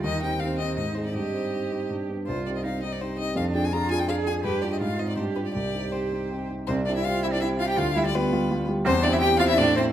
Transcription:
<<
  \new Staff \with { instrumentName = "Violin" } { \time 3/4 \key c \minor \tempo 4 = 165 ees''8 g''8 f''8 ees''8 ees''8 c''16 d''16 | ees''2 r4 | c''8 d''16 ees''16 f''8 ees''16 d''16 c''8 ees''8 | f''8 g''16 aes''16 bes''8 aes''16 g''16 f''8 aes''8 |
b'8 d''16 ees''16 f''8 ees''16 d''16 c''8 b'16 d''16 | d''4 c''4. r8 | \key c \major c''8 d''16 e''16 f''8 e''16 d''16 e''8 f''16 g''16 | f''8 e''16 d''16 b'4. r8 |
c''8 d''16 e''16 g''8 f''16 e''16 d''8 c''8 | }
  \new Staff \with { instrumentName = "Cello" } { \time 3/4 \key c \minor ees'4 c'4 ees'4 | g'2~ g'8 r8 | f'4 ees'2 | d'4 f'4 aes'4 |
g'4 f'4 g'4 | g'2~ g'8 r8 | \key c \major c'8 d'16 e'16 f'8 e'16 d'16 e'8 f'16 g'16 | f'8 e'16 d'16 b4. r8 |
c'8 d'16 e'16 g'8 f'16 e'16 d'8 c'8 | }
  \new Staff \with { instrumentName = "Grand piano" } { \time 3/4 \key c \minor ees,8 <c' ees' g'>8 <c' ees' g'>8 <c' ees' g'>8 aes,8 <c' ees' aes'>8 | g,8 <c' ees' c''>8 <c' ees' c''>8 <c' ees' c''>8 g,8 <b d' g'>8 | c,8 <c' ees' g'>8 <c' ees' g'>8 <c' ees' g'>8 <c' ees' g'>8 <c' ees' g'>8 | f,8 <d' f' aes'>8 <d' f' aes'>8 <d' f' aes'>8 <d' f' aes'>8 <d' f' aes'>8 |
g,8 <d' f' g'>8 aes,8 <c' ees'>8 g,8 <d' f' g'>8 | c,8 <c' ees' g'>8 <c' ees' g'>8 <c' ees' g'>8 <c' ees' g'>8 <c' ees' g'>8 | \key c \major c,8 <c' e' g'>8 <c' e' g'>8 <c' e' g'>8 <c' e' g'>8 <c' e' g'>8 | d,8 <g f' g'>8 <g f' g'>8 <g f' g'>8 <g f' g'>8 <g f' g'>8 |
e,8 <c' e' g'>8 <c' e' g'>8 <c' e' g'>8 a,8 <c' e' c''>8 | }
>>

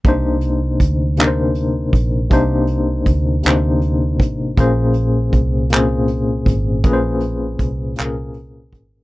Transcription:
<<
  \new Staff \with { instrumentName = "Tine electric piano" } { \time 6/8 \key c \phrygian \tempo 4. = 53 <c bes d' ees' c''>4~ <c bes d' ees' c''>16 r16 <c bes d' ees' bes' c''>4~ <c bes d' ees' bes' c''>16 r16 | <c bes d' ees' c''>4~ <c bes d' ees' c''>16 r16 <c bes d' ees' c''>4~ <c bes d' ees' c''>16 r16 | <bes, bes des' aes' c''>4~ <bes, bes des' aes' c''>16 r16 <bes, bes c' des' aes' c''>4~ <bes, bes c' des' aes' c''>16 r16 | <bes, bes des' aes' ces'' c''>4~ <bes, bes des' aes' ces'' c''>16 r16 <bes, bes des' aes' bes'>4~ <bes, bes des' aes' bes'>16 r16 | }
  \new Staff \with { instrumentName = "Fingered electric bass" } { \clef bass \time 6/8 \key c \phrygian c,4 d,4. bes,,8 | c,4 d,8 d,4 a,,8 | bes,,4 c,4. aes,,8 | bes,,4 c,8 c,4 aes,,8 | }
  \new DrumStaff \with { instrumentName = "Drums" } \drummode { \time 6/8 <hh bd>8 hh8 <hh bd>8 <hc hh>8 hh8 <hh bd>8 | <hh bd>8 hh8 <hh bd>8 <hc hh>8 hh8 <hh bd>8 | <hh bd>8 hh8 <hh bd>8 <hc hh>8 hh8 <hh bd>8 | <hh bd>8 hh8 <hh bd>8 <hc hh>8 hh8 <hh bd>8 | }
>>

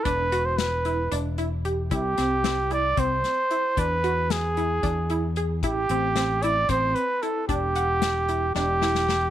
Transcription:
<<
  \new Staff \with { instrumentName = "Trumpet" } { \time 7/8 \key e \minor \tempo 4 = 113 b'8. c''16 b'4 r4. | g'4. d''8 c''4. | b'4 gis'2 r8 | g'4. d''8 c''8 b'8 a'8 |
g'2 g'4. | }
  \new Staff \with { instrumentName = "Synth pluck" } { \time 7/8 \key e \minor d'8 fis'4 e'8 d'8 e'8 g'8 | e'8 c'8 c'8 e'8 c'4 e'8 | d'8 fis'4 e'8 d'8 e'8 gis'8 | e'8 c'8 c'8 e'8 c'4 e'8 |
d'8 fis''4 e'8 d'8 e'8 g'8 | }
  \new Staff \with { instrumentName = "Fingered electric bass" } { \clef bass \time 7/8 \key e \minor e,,2 e,,4. | c,8 c,4. c,8 r4 | e,2 e,4. | a,,8 a,,4. a,,8 r4 |
e,,2 e,,4. | }
  \new DrumStaff \with { instrumentName = "Drums" } \drummode { \time 7/8 <hh bd>8 hh8 <hh sn>8 hh8 hh8 hh8 hh8 | <hh bd>8 <hh sn>8 <hh sn>8 hh8 <hh bd>8 <hh sn>8 hh8 | <hh bd>8 hh8 <hh sn>8 hh8 <hh bd>8 hh8 hh8 | <hh bd>8 hh8 <hh sn>8 hh8 <hh bd>8 hh8 hh8 |
<hh bd>8 hh8 <hh sn>8 hh8 sn8 sn16 sn16 sn8 | }
>>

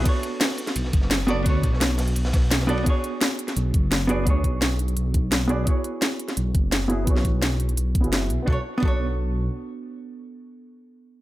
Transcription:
<<
  \new Staff \with { instrumentName = "Hollow-body jazz guitar" } { \time 4/4 \key b \dorian \tempo 4 = 171 <b d' fis' a' cis''>2.~ <b d' fis' a' cis''>8 <b d' fis' a' d''>8 | <b d' fis' a' cis''>2.~ <b d' fis' a' cis''>8 <b d' fis' a' d''>8 | <b d' fis' gis' cis''>2.~ <b d' fis' gis' cis''>8 <b d' fis' gis' d''>8 | <b d' fis' gis' cis''>2.~ <b d' fis' gis' cis''>8 <b d' fis' gis' d''>8 |
<b e' fis' gis' cis''>2.~ <b e' fis' gis' cis''>8 <b e' fis' gis' e''>8 | <b e' fis' gis' cis''>2~ <b e' fis' gis' cis''>8. <b e' fis' gis' e''>4~ <b e' fis' gis' e''>16 | <b d' fis' a' cis''>16 r8. <b d' fis' a' cis''>2.~ | <b d' fis' a' cis''>1 | }
  \new Staff \with { instrumentName = "Detuned saw bass" } { \clef bass \time 4/4 \key b \dorian r2 b,,8 fis,,16 fis,,4~ fis,,16 | d,8 a,,16 b,,4~ b,,16 b,,2 | r2 b,,8 fis,,16 fis,,4~ fis,,16 | d,8 b,,16 b,,4~ b,,16 b,,2 |
r2 b,,8 fis,,16 fis,,4~ fis,,16 | b,,8 a,,16 b,,4~ b,,16 b,,8 b,,16 fis,,8. b,,16 r16 | b,,16 r8. b,,2 r4 | r1 | }
  \new DrumStaff \with { instrumentName = "Drums" } \drummode { \time 4/4 <hh bd cymr>8 <hh cymr>8 <hh hho sn>8 <hh cymr>16 <hh sn>16 <hh cymr>16 sn16 <hh bd cymr>16 sn16 <hh cymr sn>8 <hh cymr>8 | <hh bd cymr>8 <hh bd cymr>16 sn16 <hh cymr sn>16 cymr16 <hh hho sn>16 hh16 <hh cymr>16 <hho sn>16 <hh bd cymr sn>8 <hh cymr sn>16 <cymr sn>16 hh16 cymr16 | <hh bd>8 hh8 <hh sn>8 hh16 <hh sn>16 hh8 <hh bd>8 <hh sn>8 hh8 | <hh bd>8 <hh bd>8 <hh sn>8 hh16 hh16 hh8 <hh bd>8 <hh sn>8 hh8 |
<hh bd>8 hh8 <hh sn>8 hh16 <hh sn>16 hh8 <hh bd>8 <hh sn>8 hh8 | <hh bd>16 sn16 <hh bd>8 <hh sn>8 hh16 hh16 hh8 <hh bd>16 hh16 <hh sn>8 hh8 | bd4 bd4 r4 r4 | r4 r4 r4 r4 | }
>>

